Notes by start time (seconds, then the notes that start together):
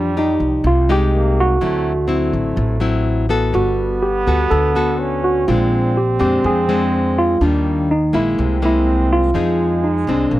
Already playing: F2 F3 G3 D4 G4
0.17 D#4 G4
0.40 C2
0.64 C2 C3 F4
0.89 G#3 D#4 G4
1.12 A#3
1.40 F#4
1.61 D2 D3 F#3 A3 C4 E4
2.08 F#3 A3 C4 E4
2.33 A1
2.56 A1 A2
2.80 F#3 C4 E4
3.29 B3 F#4 A4
3.53 G1 G3 B3 F#4
4.03 G4
4.27 D2 B3 F#4 A4
4.51 D2 D3 A4
4.75 B3 F#4 A4
5.00 C#4
5.24 F#4
5.48 A#1 A#2 G#3 C4 D4 F4
5.97 G4
6.19 F2 G#3 C4 D4 G4
6.44 F2 F3 G#4
6.69 G#3 C4 D4
7.18 F4
7.41 D#2 D#3 G3 A#3 D4 F4
7.91 D#4
8.13 A#1 G#3 A#3 E4
8.39 C2 C3 C4
8.62 G#3 A#3 E4
9.13 F4
9.34 F2 F3 G#3 C4 D#4 G#4
9.84 D#4
10.07 C2 G#3 C4 D4
10.31 A#1 A#2 A#3